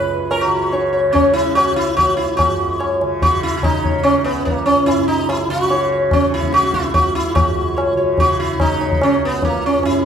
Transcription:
0.00 1.70 C#2 medium
0.00 2.38 F#2 soft
0.00 0.45 C#3 medium
0.00 0.31 B4 medium
0.31 0.42 A#4 medium
0.31 tabla na medium
0.41 1.00 F#4 medium
0.45 1.09 C#3 medium
0.72 0.92 C#5 soft
0.72 tabla tin medium
0.93 1.12 C#5 soft
1.09 3.01 C#3 soft
1.09 1.33 C#4 medium
1.13 1.33 C#5 soft
1.13 tabla na medium
1.13 tabla ge medium
1.34 1.55 E4 medium
1.55 1.76 F#4 medium
1.55 1.75 C#5 soft
1.55 tabla na medium
1.71 4.25 C#2 medium
1.76 1.96 E4 medium
1.97 2.16 F#4 medium
1.97 2.16 C#5 soft
1.97 tabla tin medium
1.97 tabla ge medium
2.17 2.36 E4 medium
2.37 4.87 F#2 medium
2.37 2.96 F#4 medium
2.37 tabla na medium
2.37 tabla ge medium
2.80 2.99 C#5 soft
2.80 tabla na medium
3.01 3.63 C#3 medium
3.01 tabla na medium
3.22 3.43 F#4 medium
3.22 tabla tin medium
3.22 tabla ge medium
3.43 3.56 E4 medium
3.57 3.64 E4 medium
3.63 5.48 C#3 medium
3.63 4.03 D#4 loud
3.63 tabla na medium
3.63 tabla ge medium
3.83 4.03 C#5 soft
3.83 tabla ge soft
4.03 4.24 C#4 medium
4.03 tabla na medium
4.24 6.71 C#2 medium
4.24 4.45 B3 medium
4.24 tabla na medium
4.45 4.65 A#3 medium
4.45 tabla tin medium
4.45 tabla ge medium
4.66 4.86 C#4 medium
4.66 tabla na medium
4.86 7.31 F#2 medium
4.86 5.07 E4 medium
4.86 tabla na medium
5.08 5.29 D#4 medium
5.29 5.50 E4 loud
5.29 tabla na medium
5.48 6.09 C#3 medium
5.48 5.89 F#4 medium
5.71 5.90 C#5 soft
5.71 tabla tin medium
5.92 6.11 C#5 soft
6.09 7.93 C#3 medium
6.09 tabla na medium
6.09 tabla ge medium
6.13 6.34 C#4 medium
6.32 6.53 E4 medium
6.32 tabla te medium
6.42 tabla ge medium
6.53 6.73 F#4 medium
6.53 tabla te medium
6.63 tabla te medium
6.71 9.17 C#2 medium
6.71 6.94 E4 medium
6.71 tabla ke medium
6.84 tabla te medium
6.94 7.15 F#4 medium
6.94 tabla tin medium
6.94 tabla ge medium
7.15 7.35 E4 medium
7.32 9.77 F#2 medium
7.32 7.94 F#4 medium
7.32 tabla na medium
7.32 tabla ge medium
7.76 7.96 C#5 soft
7.76 tabla na medium
7.93 8.55 C#3 medium
7.97 8.17 C#5 soft
8.18 8.39 F#4 medium
8.18 tabla tin medium
8.18 tabla ge medium
8.40 8.61 E4 medium
8.55 10.05 C#3 medium
8.60 9.03 D#4 medium
8.60 tabla na medium
8.60 tabla ge medium
8.81 9.00 C#5 soft
8.81 tabla te medium
8.92 tabla ge medium
9.02 9.24 C#4 medium
9.02 tabla na medium
9.17 10.05 C#2 medium
9.25 9.44 B3 medium
9.42 9.65 A#3 medium
9.42 tabla tin medium
9.42 tabla ge medium
9.66 9.85 C#4 medium
9.77 10.05 F#2 medium
9.83 10.05 E4 medium
9.83 tabla na medium

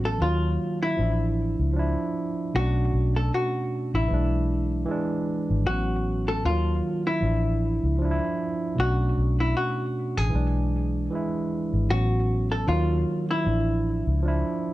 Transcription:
0.00 0.17 A1 medium
0.00 0.19 A2 medium
0.00 0.21 F#3 medium
0.00 0.22 B3 medium
0.00 0.22 C#4 medium
0.05 0.20 A4 medium
0.18 0.56 D#2 medium
0.18 0.92 D#3 medium
0.18 0.93 A#3 medium
0.18 0.78 F4 medium
0.18 0.94 F4 medium
0.24 0.95 F#3 medium
0.82 2.51 E4 medium
0.97 1.55 A1 loud
0.97 1.71 F3 medium
0.97 1.72 D4 medium
1.03 1.74 E4 medium
1.59 1.95 C#2 medium
1.73 2.48 F3 medium
1.73 2.49 D4 medium
1.79 2.51 E4 medium
2.53 2.90 B1 loud
2.53 4.00 B2 medium
2.53 4.01 A3 medium
2.53 4.02 C#4 medium
2.53 3.12 F#4 medium
2.59 4.03 D4 medium
2.94 3.29 B1 loud
3.16 3.31 A4 medium
3.34 3.90 F#4 medium
3.94 4.09 A1 medium
3.94 5.63 E4 medium
4.08 4.84 B1 medium
4.08 4.82 E3 medium
4.08 4.83 G#3 medium
4.14 4.85 D4 medium
4.86 5.60 E3 medium
4.86 5.61 G#3 medium
4.91 5.63 D4 medium
5.50 5.65 G#1 medium
5.64 6.40 A1 medium
5.64 6.43 A2 medium
5.64 6.44 F#3 medium
5.64 6.23 F#4 medium
5.69 6.45 B3 medium
5.69 6.46 C#4 medium
6.28 6.43 A4 medium
6.44 6.80 D#2 medium
6.44 7.17 D#3 medium
6.44 7.18 A#3 medium
6.44 7.02 F4 medium
6.48 7.20 F#3 medium
6.48 7.19 F4 medium
7.07 8.74 E4 medium
7.21 7.79 A1 loud
7.21 7.94 F3 medium
7.21 7.96 D4 medium
7.26 7.97 E4 medium
7.83 8.19 C#2 medium
7.99 8.72 F3 medium
7.99 8.74 D4 medium
8.05 8.09 E4 medium
8.11 8.79 E4 medium
8.75 9.14 B1 loud
8.75 10.23 B2 medium
8.75 10.24 A3 medium
8.75 10.25 C#4 medium
8.80 10.26 D4 medium
8.80 9.36 F#4 medium
9.17 9.53 B1 medium
9.40 9.55 E4 medium
9.57 10.17 F#4 medium
10.17 10.33 A1 medium
10.17 11.86 G#4 medium
10.30 11.05 E3 medium
10.30 11.06 G#3 medium
10.34 11.08 B1 medium
10.34 11.08 D4 medium
11.10 11.84 E3 medium
11.10 11.85 G#3 medium
11.15 11.86 E4 medium
11.73 11.88 G#1 medium
11.88 12.64 A1 medium
11.88 12.66 A2 medium
11.88 12.67 F#3 medium
11.88 12.68 B3 medium
11.88 12.47 F#4 medium
11.93 12.69 C#4 medium
12.52 12.66 A4 medium
12.67 13.03 D#2 medium
12.67 13.40 D#3 medium
12.67 13.41 A#3 medium
12.67 13.25 F4 medium
12.71 13.43 F#3 medium
12.71 13.42 F4 medium
13.31 14.73 E4 medium
13.44 14.02 A1 medium
13.44 14.18 F3 medium
13.44 14.19 D4 medium
13.50 14.21 E4 medium
14.07 14.42 C#2 medium
14.22 14.73 F3 medium
14.22 14.73 D4 medium
14.28 14.73 E4 medium

